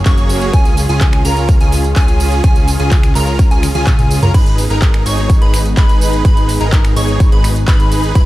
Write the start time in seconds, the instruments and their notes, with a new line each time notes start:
Already playing: analog synth pad F#3 C#4 G#4 A#4
0.05 analog synth bass F#1, supersaw synth A#3 C#4 F#4 G#4 C#5, digital synth lead C#6, kick, clap, closed hi-hat, tambourine
0.18 closed hi-hat, tambourine
0.29 open hi-hat, tambourine
0.41 closed hi-hat, tambourine
0.53 analog synth bass C#2, analog synth pad C#3 F4, supersaw synth C#4 F4 G#4, digital synth lead G#5, kick, closed hi-hat, tambourine
0.65 closed hi-hat, tambourine
0.77 open hi-hat, tambourine
0.89 analog synth bass C#2, supersaw synth C#4 F4 G#4, digital synth lead G#5, closed hi-hat, tambourine
1.01 kick, clap, closed hi-hat, tambourine
1.13 finger snap, closed hi-hat
1.25 analog synth bass C#2, supersaw synth C#4 F4 A#4, digital synth lead A#5, open hi-hat, tambourine
1.37 closed hi-hat, tambourine
1.49 kick, closed hi-hat, tambourine
1.61 analog synth bass C#2, supersaw synth C#4 F4 G#4, digital synth lead G#5, closed hi-hat, tambourine
1.72 open hi-hat, tambourine
1.84 closed hi-hat, tambourine
1.96 analog synth bass C#2, supersaw synth C#4 F4 G#4, digital synth lead G#5, kick, clap, closed hi-hat, tambourine
2.08 closed hi-hat, tambourine
2.20 open hi-hat, tambourine
2.32 closed hi-hat, tambourine
2.44 analog synth bass C#2, supersaw synth C#4 F4 G#4, digital synth lead G#5, kick, closed hi-hat, tambourine
2.56 closed hi-hat, tambourine
2.68 open hi-hat, tambourine
2.80 analog synth bass C#2, supersaw synth C#4 F4 G#4, digital synth lead G#5, closed hi-hat, tambourine
2.91 kick, clap, closed hi-hat, tambourine
3.03 finger snap, closed hi-hat, tambourine
3.15 analog synth bass C#2, supersaw synth C#4 F4 A#4, digital synth lead A#5, clap, open hi-hat, tambourine
3.27 closed hi-hat, tambourine
3.39 kick, closed hi-hat, tambourine
3.51 analog synth bass C#2, supersaw synth C#4 F4 G#4, digital synth lead G#5, closed hi-hat, tambourine
3.63 finger snap, open hi-hat, high tom, tambourine
3.75 analog synth bass C#2, supersaw synth C#4 F4 G#4, digital synth lead G#5, closed hi-hat, high tom, tambourine
3.87 kick, clap, closed hi-hat, mid tom, tambourine
3.99 closed hi-hat, mid tom, tambourine
4.11 open hi-hat, tambourine
4.22 analog synth bass C#2, supersaw synth C#4 F4 A#4, digital synth lead A#5, closed hi-hat, mid tom, tambourine
4.34 analog synth bass G#1, analog synth pad G#3 B3 D#4, supersaw synth D#4 G#4 B4, digital synth lead B5, kick, closed hi-hat, crash, tambourine
4.46 closed hi-hat, tambourine
4.58 open hi-hat, tambourine
4.70 analog synth bass G#1, supersaw synth D#4 G#4 A#4, digital synth lead A#5, closed hi-hat, tambourine
4.82 kick, clap, closed hi-hat, tambourine
4.94 finger snap, closed hi-hat
5.06 analog synth bass G#1, supersaw synth D#4 G#4 C#5, digital synth lead C#6, open hi-hat, tambourine
5.18 closed hi-hat, tambourine
5.30 kick, closed hi-hat, tambourine
5.41 analog synth bass G#1, supersaw synth D#4 G#4 B4, digital synth lead B5, closed hi-hat
5.54 finger snap, open hi-hat, tambourine
5.66 closed hi-hat, tambourine
5.77 analog synth bass G#1, supersaw synth D#4 G#4 B4, digital synth lead B5, kick, clap, closed hi-hat, tambourine
5.89 closed hi-hat, tambourine
6.01 open hi-hat, tambourine
6.13 closed hi-hat, tambourine
6.25 analog synth bass G#1, supersaw synth D#4 G#4 B4, digital synth lead B5, kick, closed hi-hat, tambourine
6.37 closed hi-hat, tambourine
6.49 open hi-hat, tambourine
6.60 analog synth bass G#1, supersaw synth D#4 G#4 A#4, digital synth lead A#5, closed hi-hat, tambourine
6.72 kick, clap, closed hi-hat, tambourine
6.85 finger snap, closed hi-hat, tambourine
6.96 analog synth bass G#1, supersaw synth D#4 G#4 C#5, digital synth lead C#6, open hi-hat, tambourine
7.08 closed hi-hat, tambourine
7.20 kick, closed hi-hat, tambourine
7.32 analog synth bass G#1, supersaw synth D#4 G#4 B4, digital synth lead B5, closed hi-hat
7.44 finger snap, open hi-hat, tambourine
7.56 closed hi-hat, tambourine
7.68 analog synth bass G#1, supersaw synth D#4 G#4 B4, digital synth lead B5, kick, clap, closed hi-hat, tambourine
7.80 closed hi-hat, tambourine
7.92 open hi-hat, tambourine
8.04 closed hi-hat, tambourine
8.15 analog synth bass E1, analog synth pad E3 E4 G#4 B4, supersaw synth E4 G#4 B4, digital synth lead B5, kick, closed hi-hat, tambourine